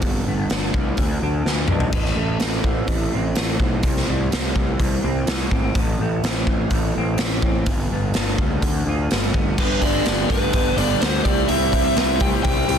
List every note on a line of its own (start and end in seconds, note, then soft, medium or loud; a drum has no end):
0.02 0.22 G1 medium
0.02 0.99 G2 medium
0.02 kick medium
0.02 open hi-hat soft
0.27 0.45 G1 medium
0.27 0.99 B3 medium
0.50 0.69 G1 medium
0.50 0.99 D4 medium
0.50 snare loud
0.50 open hi-hat soft
0.74 0.93 C2 medium
0.74 0.98 G3 medium
0.74 kick medium
0.97 1.17 D2 medium
0.97 1.46 D3 medium
0.97 kick medium
0.97 open hi-hat soft
1.22 1.41 D2 medium
1.22 1.70 D4 medium
1.45 1.64 D2 medium
1.45 1.94 D3 medium
1.45 snare soft
1.68 1.88 B1 medium
1.68 1.94 D4 medium
1.68 mid tom medium
1.80 floor tom medium
1.93 2.12 A1 medium
1.93 3.13 A2 medium
1.93 kick loud
1.93 open hi-hat soft
1.93 crash medium
2.05 snare soft
2.16 2.36 A1 medium
2.16 2.88 A3 medium
2.40 2.59 A1 medium
2.40 3.12 C4 medium
2.40 snare medium
2.40 open hi-hat soft
2.64 2.83 A1 medium
2.64 3.35 E3 medium
2.64 kick medium
2.88 3.07 A1 medium
2.88 3.85 A3 medium
2.88 kick medium
2.88 open hi-hat soft
3.12 3.33 A1 medium
3.12 3.59 C4 medium
3.35 3.56 A1 medium
3.35 4.56 E3 medium
3.35 snare medium
3.35 open hi-hat soft
3.59 3.79 B1 medium
3.59 4.32 C4 medium
3.59 kick medium
3.83 4.03 C2 medium
3.83 5.04 C3 medium
3.83 kick medium
3.83 open hi-hat soft
3.97 snare soft
4.08 4.28 C2 medium
4.08 4.79 G3 medium
4.32 4.52 C2 medium
4.32 5.02 C4 medium
4.32 snare medium
4.32 open hi-hat soft
4.56 4.75 C2 medium
4.56 5.26 E3 medium
4.56 kick medium
4.79 4.99 C2 medium
4.79 5.76 G3 medium
4.79 kick medium
4.79 open hi-hat soft
5.03 5.23 C2 medium
5.03 5.51 C4 medium
5.27 5.47 C2 medium
5.27 5.76 E3 medium
5.27 snare medium
5.27 open hi-hat soft
5.51 5.70 G#1 medium
5.51 5.76 C4 medium
5.51 kick medium
5.75 5.95 A1 medium
5.75 6.96 A2 medium
5.75 kick medium
5.75 open hi-hat soft
5.99 6.19 A1 medium
5.99 6.72 A3 medium
6.24 6.43 A1 medium
6.24 6.97 C4 medium
6.24 snare medium
6.24 open hi-hat soft
6.46 6.66 A1 medium
6.46 7.20 E3 medium
6.46 kick medium
6.70 6.90 A1 medium
6.70 7.68 A3 medium
6.70 kick medium
6.70 open hi-hat soft
6.97 7.15 A1 medium
6.97 7.44 C4 medium
7.18 7.38 A1 medium
7.18 7.68 E3 medium
7.18 snare loud
7.18 open hi-hat soft
7.42 7.62 A1 medium
7.42 7.68 C4 medium
7.42 kick medium
7.66 7.86 G1 medium
7.66 8.64 G2 medium
7.66 kick loud
7.66 open hi-hat soft
7.92 8.11 G1 medium
7.92 8.63 B3 medium
8.14 8.35 G1 medium
8.14 8.64 D4 medium
8.14 snare medium
8.14 open hi-hat soft
8.38 8.57 C#2 medium
8.38 8.63 G3 medium
8.38 kick medium
8.62 8.82 D2 medium
8.62 9.11 D3 medium
8.62 kick medium
8.62 open hi-hat soft
8.87 9.06 D2 medium
8.87 9.12 F4 medium
9.11 9.30 G1 medium
9.11 9.59 G3 medium
9.11 snare medium
9.11 open hi-hat soft
9.34 9.53 G1 medium
9.34 9.59 B3 medium
9.34 kick medium
9.58 9.76 G1 medium
9.58 10.05 G2 medium
9.58 10.06 D3 medium
9.58 9.86 G3 medium
9.58 9.84 B3 medium
9.58 9.83 D4 medium
9.58 9.82 G4 medium
9.58 9.82 B4 medium
9.58 kick loud
9.58 crash loud
9.81 9.99 G1 medium
9.81 10.03 G2 medium
9.81 10.04 D3 medium
9.81 10.07 D4 medium
9.81 10.09 G4 medium
9.81 10.04 D5 medium
9.81 kick medium
9.81 open hi-hat medium
9.85 10.07 G3 medium
9.85 10.07 B3 medium
10.06 10.24 G1 medium
10.06 10.54 G2 medium
10.06 10.54 D3 medium
10.06 10.34 G3 medium
10.06 10.32 B3 medium
10.06 10.31 D4 medium
10.06 10.30 G4 medium
10.06 10.29 D5 medium
10.06 snare loud
10.06 open hi-hat medium
10.29 10.47 G1 medium
10.29 10.53 G2 medium
10.29 10.53 D3 medium
10.29 10.54 B3 medium
10.29 10.55 D4 medium
10.29 10.55 G4 medium
10.29 10.77 B4 medium
10.29 kick medium
10.29 open hi-hat medium
10.34 10.52 G3 medium
10.53 10.71 G1 medium
10.53 10.76 G2 medium
10.53 10.76 D3 medium
10.53 10.77 G3 medium
10.53 10.76 B3 medium
10.53 10.76 D4 medium
10.53 10.75 G4 medium
10.53 kick loud
10.53 open hi-hat medium
10.76 10.95 G1 loud
10.76 11.25 G2 medium
10.76 11.25 D3 medium
10.76 11.00 G3 medium
10.76 11.02 B3 medium
10.76 11.03 D4 medium
10.76 11.04 G4 medium
10.76 11.00 D5 medium
10.76 open hi-hat medium
11.01 11.19 D2 medium
11.01 11.24 G2 medium
11.01 11.25 D3 medium
11.01 11.24 G3 medium
11.01 11.25 B3 medium
11.01 11.26 D4 medium
11.01 11.24 C5 medium
11.01 snare loud
11.01 open hi-hat medium
11.05 11.24 G4 medium
11.24 11.43 C2 medium
11.24 11.47 C3 medium
11.24 11.51 G3 medium
11.24 11.51 C4 medium
11.24 11.48 E4 loud
11.24 11.52 G4 medium
11.24 11.47 D5 medium
11.24 kick medium
11.24 open hi-hat medium
11.28 11.49 C3 medium
11.28 11.49 E3 medium
11.48 11.84 C2 medium
11.48 11.95 C3 medium
11.48 11.97 E3 medium
11.48 11.75 G3 medium
11.48 11.73 E4 medium
11.48 11.84 E5 loud
11.48 open hi-hat medium
11.53 11.74 C4 medium
11.53 11.72 G4 medium
11.73 11.95 C3 medium
11.73 11.98 G3 medium
11.73 11.98 C4 medium
11.73 11.96 E4 medium
11.73 11.99 G4 medium
11.73 kick medium
11.73 open hi-hat medium
11.85 12.21 E5 loud
11.96 12.32 C2 medium
11.96 12.45 C3 medium
11.96 12.43 E3 medium
11.96 12.24 G3 medium
11.96 12.23 C4 medium
11.96 12.21 E4 loud
11.96 12.20 G4 medium
11.96 snare loud
11.96 open hi-hat medium
12.20 12.43 C3 medium
12.20 12.45 C4 medium
12.20 12.44 E4 medium
12.20 12.47 G4 medium
12.20 12.28 G5 medium
12.20 kick medium
12.20 open hi-hat medium
12.25 12.44 G3 medium
12.43 12.62 C2 medium
12.43 12.67 C3 medium
12.43 12.70 E3 medium
12.43 12.69 G3 medium
12.43 12.68 C4 medium
12.43 12.69 E4 medium
12.43 12.78 G5 medium
12.43 kick loud
12.43 open hi-hat medium
12.48 12.67 G4 medium
12.68 12.78 C2 medium
12.68 12.78 E3 medium
12.68 12.78 G3 medium
12.68 12.78 C4 medium
12.68 12.78 E4 medium
12.68 12.78 G4 medium
12.68 open hi-hat medium
12.72 12.78 C3 medium